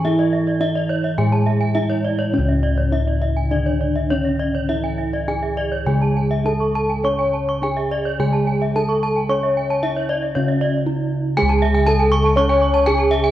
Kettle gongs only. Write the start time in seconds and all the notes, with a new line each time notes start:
Already playing: E3
0.05 E4
0.61 D4
1.18 A2
1.76 D4
2.33 C#4
2.38 C#2
2.93 D4
4.10 D4
4.69 E4
5.28 D4
5.86 C#3
6.45 D4
7.04 C#5
7.62 D4
8.19 C#3
8.75 D4
9.29 C#5
9.83 D4
10.35 C#3
10.86 D4
11.37 G#4
11.42 C#2
11.86 D4
12.86 D4